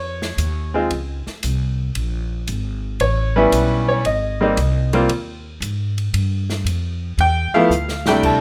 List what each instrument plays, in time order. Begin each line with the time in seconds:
Already playing: upright bass F2, upright piano C#5
0.22 snare
0.37 upright bass D#2, hi-hat pedal, ride
0.74 upright piano G#3 C4 D#4 F4
0.91 upright bass C#2, ride
1.27 muted upright bass stroke, snare
1.43 upright bass C2, hi-hat pedal, ride
1.95 upright bass A#1, ride
2.48 upright bass G#1, hi-hat pedal, ride
3.00 upright bass A1, upright piano C#5, ride
3.36 upright piano G3 B3 C#4 E4 B4
3.52 upright bass B1, hi-hat pedal, ride
3.89 upright piano C#5
4.05 upright bass G#1, upright piano D#5, ride
4.41 upright piano G3 A#3 C4 D#4
4.57 upright bass C2, hi-hat pedal, ride
4.93 upright piano G3 A#3 C4 F4, ride
5.09 upright bass D#2, ride
5.60 upright bass G#2, hi-hat pedal, ride
5.98 ride
6.14 upright bass G2, ride
6.50 snare
6.65 upright bass F2, hi-hat pedal, ride
7.18 upright bass E2, upright piano G5, ride
7.53 upright piano F3 A3 B3 E4 F5, muted upright bass stroke
7.69 upright bass D2, hi-hat pedal
7.89 snare
8.06 upright piano C3 G3 A3 D4 E4 G5, snare
8.23 upright bass C2, upright piano A5, kick, crash